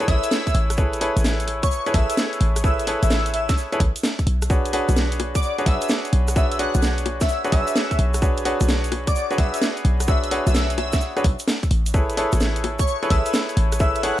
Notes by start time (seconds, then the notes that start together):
0.00 E4 G#4 A4 B4 C#5, closed hi-hat, shaker
0.08 A1 E4 G#4 A4 B4 C#5 E5, kick, open hi-hat
0.23 closed hi-hat, shaker
0.31 snare, shaker
0.47 kick, closed hi-hat, shaker
0.55 A1, open hi-hat
0.70 cross-stick, closed hi-hat, shaker
0.77 E4 G#4 A4 B4 C#5, kick, shaker
0.93 closed hi-hat, shaker
1.01 E4 G#4 A4 B4 C#5, open hi-hat
1.17 A1, closed hi-hat, shaker
1.24 snare, shaker
1.40 closed hi-hat, shaker
1.48 cross-stick, open hi-hat
1.63 C#5, kick, closed hi-hat, shaker
1.71 C#5, shaker
1.86 E4 G#4 A4 B4 C#5, closed hi-hat, shaker
1.94 A1 E4 G#4 A4 B4 C#5 E5, kick, open hi-hat
2.10 E5, closed hi-hat, shaker
2.17 snare, shaker
2.33 closed hi-hat, shaker
2.41 A1, open hi-hat
2.56 cross-stick, closed hi-hat, shaker
2.64 E4 G#4 A4 B4 C#5 E5, kick, shaker
2.79 E5, closed hi-hat, shaker
2.87 E4 G#4 A4 B4 C#5, open hi-hat
3.03 A1 E5, closed hi-hat, shaker
3.10 snare, shaker
3.26 closed hi-hat, shaker
3.34 E5, open hi-hat
3.49 E5, kick, snare, closed hi-hat, shaker
3.58 shaker
3.72 E4 G#4 A4 B4 C#5, closed hi-hat, shaker
3.80 A1, kick, open hi-hat
3.96 closed hi-hat, shaker
4.03 snare, shaker
4.19 kick, closed hi-hat, shaker
4.27 B1, open hi-hat
4.42 cross-stick, closed hi-hat, shaker
4.50 D4 F#4 G#4 B4 C#5, kick, shaker
4.65 closed hi-hat, shaker
4.73 D4 F#4 G#4 B4 C#5, open hi-hat
4.89 B1, closed hi-hat, high bongo, shaker
4.96 snare, shaker
5.12 closed hi-hat, shaker
5.20 cross-stick, open hi-hat, high bongo
5.35 D5, kick, closed hi-hat, shaker
5.43 D5, shaker
5.58 D4 F#4 G#4 B4 C#5, closed hi-hat, shaker
5.66 B1 D4 F#4 G#4 B4 E5, kick, open hi-hat
5.81 E5, closed hi-hat, shaker
5.88 snare, shaker
6.05 closed hi-hat, shaker
6.13 B1, open hi-hat
6.28 cross-stick, closed hi-hat, shaker
6.36 D4 F#4 G#4 B4 C#5 E5, kick, shaker
6.51 E5, closed hi-hat, shaker
6.59 D4 F#4 G#4 B4 C#5 F#5, open hi-hat
6.75 B1, closed hi-hat, high bongo, shaker
6.82 snare, shaker
6.98 closed hi-hat, shaker
7.06 open hi-hat, high bongo
7.21 E5, kick, snare, closed hi-hat, shaker
7.29 shaker
7.44 D4 F#4 G#4 B4 C#5, closed hi-hat, shaker
7.52 B1 D4 F#4 G#4 B4 C#5 E5, kick, open hi-hat
7.67 closed hi-hat, shaker
7.76 snare, shaker
7.91 kick, closed hi-hat, shaker
7.99 B1, open hi-hat
8.14 cross-stick, closed hi-hat, shaker
8.22 D4 F#4 G#4 B4 C#5, kick, shaker
8.37 closed hi-hat, shaker
8.45 D4 F#4 G#4 B4 C#5, open hi-hat
8.61 B1, closed hi-hat, high bongo, shaker
8.68 snare, shaker
8.84 closed hi-hat, shaker
8.92 cross-stick, open hi-hat, high bongo
9.07 D5, kick, closed hi-hat, shaker
9.15 D5, shaker
9.31 D4 F#4 G#4 B4 C#5, closed hi-hat, shaker
9.38 B1 D4 F#4 G#4 B4 C#5 E5, kick, open hi-hat
9.54 E5, closed hi-hat, shaker
9.62 snare, shaker
9.77 closed hi-hat, shaker
9.85 B1, open hi-hat
10.00 cross-stick, closed hi-hat, shaker
10.08 D4 F#4 G#4 B4 C#5 E5, kick
10.24 E5, closed hi-hat, shaker
10.31 D4 F#4 G#4 B4 C#5, open hi-hat
10.47 B1 E5, closed hi-hat, high bongo, shaker
10.55 snare, shaker
10.70 closed hi-hat, shaker
10.78 E5, open hi-hat, high bongo
10.92 E5, kick, snare, closed hi-hat, shaker
11.01 shaker
11.17 D4 F#4 G#4 B4 C#5, cross-stick, closed hi-hat, shaker
11.24 B1, kick, open hi-hat
11.39 closed hi-hat, shaker
11.48 snare, shaker
11.63 kick, closed hi-hat, shaker
11.71 A1, open hi-hat
11.86 closed hi-hat, shaker
11.94 E4 G#4 A4 B4 C#5, kick, shaker
12.10 closed hi-hat, shaker
12.17 E4 G#4 A4 B4 C#5, open hi-hat
12.32 A1, closed hi-hat, high bongo, shaker
12.40 snare, shaker
12.56 closed hi-hat, shaker
12.64 cross-stick, open hi-hat, high bongo
12.79 C#5, kick, closed hi-hat, shaker
12.87 C#5, shaker
13.03 E4 G#4 A4 B4 C#5, closed hi-hat, shaker
13.10 A1 E4 G#4 A4 B4 C#5 E5, kick, open hi-hat
13.26 E5, closed hi-hat, shaker
13.33 snare, shaker
13.49 closed hi-hat, shaker
13.57 A1, open hi-hat
13.72 cross-stick, closed hi-hat, shaker
13.80 E4 G#4 A4 B4 C#5 E5, kick, shaker
13.95 E5, closed hi-hat, shaker
14.03 E4 G#4 A4 B4 C#5 F#5, open hi-hat